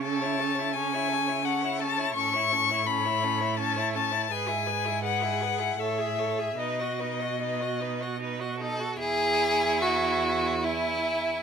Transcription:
<<
  \new Staff \with { instrumentName = "Violin" } { \time 3/4 \key e \major \tempo 4 = 79 a''4 gis''4 fis''8 a''8 | cis'''4 b''4 a''8 a''8 | gis''4 fis''4 e''4 | dis''2~ dis''8 r8 |
gis''2 gis''4 | }
  \new Staff \with { instrumentName = "Violin" } { \time 3/4 \key e \major a'16 cis''16 a'16 cis''16 a'16 cis''16 a'16 cis''16 a'16 cis''16 a'16 cis''16 | a'16 cis''16 a'16 cis''16 a'16 cis''16 a'16 cis''16 a'16 cis''16 a'16 cis''16 | b'16 gis'16 b'16 gis'16 b'16 gis'16 b'16 gis'16 cis''16 e''16 cis''16 e''16 | b'16 dis''16 b'16 dis''16 b'16 dis''16 b'16 dis''16 b'16 dis''16 a'8 |
gis'4 fis'4 e'4 | }
  \new Staff \with { instrumentName = "Viola" } { \time 3/4 \key e \major cis'16 e'16 cis'16 e'16 cis'16 e'16 cis'16 e'16 cis'16 e'16 cis'16 e'16 | cis'16 e'16 cis'16 e'16 cis'16 e'16 cis'16 e'16 cis'16 e'16 cis'16 e'16 | gis'16 e'16 gis'16 e'16 gis'16 e'16 gis'16 e'16 a'16 gis'16 a'16 gis'16 | dis'16 fis'16 dis'16 fis'16 dis'16 fis'16 dis'16 fis'16 dis'16 fis'16 dis'16 fis'16 |
e'2 e'4 | }
  \new Staff \with { instrumentName = "Cello" } { \clef bass \time 3/4 \key e \major cis2. | a,2. | gis,2 a,4 | b,2~ b,8. r16 |
e,2. | }
>>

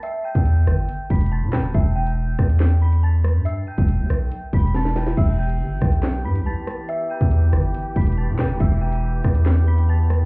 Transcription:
<<
  \new Staff \with { instrumentName = "Synth bell" } { \time 4/4 \key e \minor \tempo 4 = 140 <e'' e'''>8 <g'' g'''>2 <b'' b'''>8 <a'' a'''>8 <g'' g'''>8 | <e'' e'''>8 <g'' g'''>2 <b'' b'''>8 <a'' a'''>4 | <e'' e'''>8 <g'' g'''>2 <b'' b'''>8 <a'' a'''>8 <g'' g'''>8 | <e'' e'''>8 <g'' g'''>2 <b'' b'''>8 <a'' a'''>4 |
<e'' e'''>8 <g'' g'''>2 <b'' b'''>8 <a'' a'''>8 <g'' g'''>8 | <e'' e'''>8 <g'' g'''>2 <b'' b'''>8 <a'' a'''>4 | }
  \new Staff \with { instrumentName = "Analog synth pad" } { \time 4/4 \key e \minor << { r1 | r1 | r1 | <e g'>1~ |
<e g'>1~ | <e g'>1 | } \\ { r1 | r1 | r1 | b1~ |
b1 | b1 | } >> }
  \new Staff \with { instrumentName = "808-style bass" } { \clef bass \time 4/4 \key e \minor r8. e,8. g,,8 r8 e,,8. b,16. e,,16. | e,,4. e,2~ e,16 g,16~ | g,8 r16 e,,8 e,16 b,,8 r8 e,,4. | e,,4 g,,8 b,,4 g,16. b,,16. r8. |
r8. e,8. g,,8 r8 e,,8. b,16. e,,16. | e,,4. e,2~ e,16 g,16 | }
  \new DrumStaff \with { instrumentName = "Drums" } \drummode { \time 4/4 hh8. bd16 hh8 <hh ss>8 hh8 <hh bd>32 hh32 hh32 hh32 r8 <hc hh ss sn>8 | <hh bd>8. hh16 r8 <hh bd ss>16 hh16 <hc sn>8. hh16 r8 <hh ss>8 | hh8. bd16 hh8 <hh ss>8 \tuplet 3/2 { hh16 r16 r16 <hh bd>16 hh16 hh16 } sn16 sn16 <hh sn>16 sn16 | <cymc bd>8. hh16 r8 <hh bd ss>16 hh16 <hc sn>8. hh16 r8 <hh ss>8 |
hh8. bd16 hh8 <hh ss>8 hh8 <hh bd>32 hh32 hh32 hh32 r8 <hc hh ss sn>8 | <hh bd>8. hh16 r8 <hh bd ss>16 hh16 <hc sn>8. hh16 r8 <hh ss>8 | }
>>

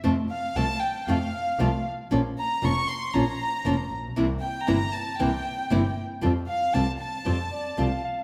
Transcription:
<<
  \new Staff \with { instrumentName = "Violin section" } { \time 4/4 \key f \major \tempo 4 = 116 r8 f''8 a''8 g''8 f''4. r8 | r8 bes''8 des'''8 c'''8 bes''4. r8 | r8 g''8 bes''8 a''8 g''4. r8 | r8 f''8 a''8 a''2 r8 | }
  \new Staff \with { instrumentName = "Clarinet" } { \time 4/4 \key f \major r1 | r1 | r1 | r2 r8 d''8 f''8 f''8 | }
  \new Staff \with { instrumentName = "Nylon-string guitar" } { \time 4/4 \key f \major <c f a c' f'>8 r8 <c f a c' f'>8 r8 <c f a c' f'>8 r8 <c f a c' f'>8 r8 | <f bes des' f'>8 r8 <f bes des' f'>8 r8 <f bes des' f'>8 r8 <f bes des' f'>8 r8 | <c e bes c' e'>8 r8 <c e bes c' e'>8 r8 <c e bes c' e'>8 r8 <c e bes c' e'>8 r8 | <f g c' f'>8 r8 <f g c' f'>8 r8 <f g c' f'>8 r8 <f g c' f'>8 r8 | }
  \new Staff \with { instrumentName = "Double bass" } { \clef bass \time 4/4 \key f \major f,8 r8 c,8 r8 f,8 r8 c,8 r8 | bes,,8 r8 f,,8 r8 bes,,8 r8 f,,8 bes,,8 | c,8 r8 g,,8 r8 c,8 r8 g,,8 r8 | f,8 r8 c,8 r8 f,8 r8 c,8 r8 | }
>>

